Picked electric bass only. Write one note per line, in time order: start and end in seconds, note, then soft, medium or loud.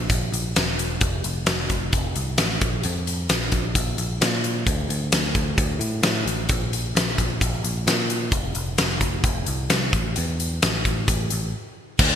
0.10 0.30 A#1 medium
0.32 0.53 A#1 medium
0.56 0.98 E1 medium
1.02 1.22 F1 medium
1.24 1.45 F1 medium
1.47 1.67 F1 medium
1.70 1.90 F1 medium
1.93 2.14 F1 medium
2.16 2.37 C2 medium
2.39 2.59 A1 medium
2.62 2.82 A#1 medium
2.85 3.26 F2 medium
3.30 3.50 A#1 medium
3.52 3.73 A#1 medium
3.76 3.96 A#1 medium
3.98 4.19 A#1 medium
4.21 4.63 A#2 medium
4.67 4.87 D2 medium
4.89 5.10 D2 medium
5.13 5.33 D2 medium
5.35 5.56 D2 medium
5.58 5.79 D2 medium
5.79 6.01 A2 medium
6.03 6.24 A2 medium
6.26 6.47 A1 medium
6.50 6.92 A#1 medium
6.95 7.16 A#1 medium
7.18 7.39 A#1 medium
7.41 7.62 A#1 medium
7.64 7.85 A#1 medium
7.87 8.29 A#2 medium
8.32 8.53 F1 loud
8.55 8.76 F1 medium
8.79 9.00 F1 medium
9.01 9.22 F1 medium
9.24 9.45 F1 medium
9.48 9.68 C2 medium
9.70 9.91 C2 medium
9.93 10.14 A1 medium
10.18 10.59 E2 medium
10.63 10.83 A1 medium
10.86 11.06 A1 medium
11.08 11.29 A1 medium
11.32 11.52 A1 medium
11.99 12.15 D2 loud